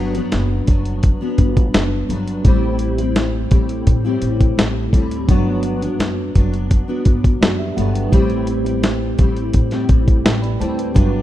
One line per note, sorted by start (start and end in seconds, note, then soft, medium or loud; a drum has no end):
0.00 0.18 G1 medium
0.00 0.14 G2 medium
0.00 0.15 F#3 medium
0.00 1.34 G3 medium
0.00 0.14 B3 medium
0.00 0.13 D4 medium
0.00 1.35 D4 medium
0.00 1.35 F#4 medium
0.00 1.36 B4 medium
0.14 0.67 F#3 soft
0.14 0.68 B3 medium
0.14 0.67 D4 soft
0.14 closed hi-hat soft
0.32 0.61 F#1 medium
0.32 snare medium
0.32 closed hi-hat medium
0.67 1.11 F#1 medium
0.67 1.21 F#3 medium
0.67 1.21 B3 medium
0.67 1.20 D4 medium
0.67 kick medium
0.67 closed hi-hat medium
0.85 closed hi-hat soft
1.03 kick medium
1.03 closed hi-hat medium
1.21 2.09 F#3 medium
1.21 2.10 B3 medium
1.21 2.10 D4 medium
1.38 1.67 G1 loud
1.38 2.45 G3 medium
1.38 2.45 D4 soft
1.38 2.45 F#4 soft
1.38 2.46 B4 medium
1.38 kick medium
1.38 closed hi-hat medium
1.57 kick medium
1.57 closed hi-hat soft
1.74 2.03 F#1 medium
1.74 snare loud
1.74 closed hi-hat medium
2.09 2.38 G1 medium
2.09 2.45 G2 medium
2.09 2.45 F#3 medium
2.09 2.46 B3 medium
2.09 2.46 D4 medium
2.09 closed hi-hat medium
2.28 closed hi-hat medium
2.43 3.47 A1 medium
2.43 2.98 A2 medium
2.43 2.99 G3 medium
2.43 5.24 A3 medium
2.43 2.98 C4 medium
2.43 5.25 E4 medium
2.43 5.25 G4 medium
2.43 kick loud
2.43 closed hi-hat medium
2.47 2.96 E4 loud
2.47 5.26 C5 medium
2.79 closed hi-hat medium
2.98 3.50 G3 soft
2.98 3.52 C4 soft
2.98 3.51 E4 medium
2.98 closed hi-hat medium
3.16 snare medium
3.16 closed hi-hat medium
3.51 3.80 A1 medium
3.51 4.04 A2 medium
3.51 4.05 G3 medium
3.51 4.04 C4 medium
3.51 4.03 E4 medium
3.51 kick medium
3.51 closed hi-hat medium
3.69 closed hi-hat soft
3.87 4.15 A2 medium
3.87 kick medium
3.87 closed hi-hat medium
4.05 4.92 A2 medium
4.05 4.94 G3 medium
4.05 4.94 C4 medium
4.05 4.93 E4 medium
4.22 4.50 A1 medium
4.22 closed hi-hat medium
4.41 kick medium
4.41 closed hi-hat medium
4.58 4.86 A1 medium
4.58 snare loud
4.58 closed hi-hat loud
4.93 5.30 D2 medium
4.93 5.28 A2 medium
4.93 5.29 G3 medium
4.93 5.29 C4 medium
4.93 5.30 E4 medium
4.93 kick medium
4.93 closed hi-hat medium
5.11 closed hi-hat medium
5.26 5.85 G1 medium
5.26 5.82 G2 medium
5.26 5.82 F#3 medium
5.26 7.72 G3 medium
5.26 5.82 B3 medium
5.26 7.73 D4 medium
5.26 7.38 F#4 medium
5.26 kick loud
5.26 closed hi-hat medium
5.31 5.80 D4 loud
5.31 7.39 B4 medium
5.63 closed hi-hat medium
5.81 6.34 F#3 soft
5.81 6.35 B3 soft
5.81 6.35 D4 medium
5.81 closed hi-hat soft
5.99 6.28 F#1 medium
5.99 snare medium
5.99 closed hi-hat medium
6.35 6.78 F#1 medium
6.35 6.88 F#3 medium
6.35 6.88 B3 medium
6.35 6.87 D4 medium
6.35 kick medium
6.35 closed hi-hat medium
6.54 closed hi-hat soft
6.71 kick medium
6.71 closed hi-hat medium
6.88 7.77 F#3 medium
6.88 7.77 B3 medium
6.88 7.77 D4 medium
7.05 7.34 G1 medium
7.05 kick medium
7.05 closed hi-hat medium
7.24 kick medium
7.24 closed hi-hat soft
7.41 7.70 F#1 medium
7.41 7.59 F#4 soft
7.41 7.58 D5 medium
7.41 snare loud
7.41 closed hi-hat medium
7.59 7.77 G4 medium
7.59 7.76 E5 medium
7.76 8.06 G1 medium
7.76 8.11 G2 medium
7.76 8.13 F#3 medium
7.76 8.13 B3 medium
7.76 8.14 D4 medium
7.76 7.94 A4 medium
7.76 7.94 F#5 medium
7.76 closed hi-hat medium
7.94 8.28 B4 soft
7.94 8.28 G5 medium
7.94 closed hi-hat medium
8.09 9.15 A1 medium
8.09 8.65 A2 medium
8.09 10.90 A3 medium
8.09 10.91 E4 medium
8.09 10.92 G4 medium
8.09 kick loud
8.13 8.66 G3 medium
8.13 8.65 C4 loud
8.13 8.63 E4 loud
8.13 10.22 C5 medium
8.13 closed hi-hat medium
8.30 closed hi-hat soft
8.47 closed hi-hat medium
8.65 9.18 G3 soft
8.65 9.19 C4 soft
8.65 9.18 E4 medium
8.65 closed hi-hat medium
8.83 snare loud
8.83 closed hi-hat medium
9.18 9.47 A1 medium
9.18 9.71 A2 medium
9.18 9.72 G3 medium
9.18 9.71 C4 medium
9.18 9.70 E4 medium
9.18 kick medium
9.18 closed hi-hat medium
9.37 closed hi-hat soft
9.53 9.83 A2 medium
9.53 kick medium
9.53 closed hi-hat medium
9.71 10.58 A2 medium
9.71 10.60 G3 medium
9.71 10.60 C4 medium
9.71 10.60 E4 medium
9.71 snare soft
9.71 closed hi-hat soft
9.89 10.18 A1 medium
9.89 kick medium
9.89 closed hi-hat medium
10.08 kick medium
10.08 closed hi-hat soft
10.25 10.54 A1 medium
10.25 10.42 B4 soft
10.25 10.42 G5 medium
10.25 snare loud
10.25 closed hi-hat medium
10.42 10.60 D5 medium
10.42 10.59 B5 medium
10.42 closed hi-hat soft
10.59 10.97 D2 medium
10.59 10.94 A2 medium
10.59 10.95 G3 medium
10.59 10.95 C4 medium
10.59 10.96 E4 medium
10.59 10.78 C5 medium
10.59 10.78 A5 medium
10.59 closed hi-hat medium
10.78 10.97 B4 soft
10.78 11.12 G5 medium
10.78 closed hi-hat medium
10.93 11.22 G1 medium
10.93 11.22 G2 medium
10.93 11.22 F#3 medium
10.93 11.22 G3 medium
10.93 11.22 B3 medium
10.93 11.22 D4 medium
10.93 11.22 F#4 medium
10.93 kick loud
10.93 closed hi-hat medium
10.99 11.22 B4 medium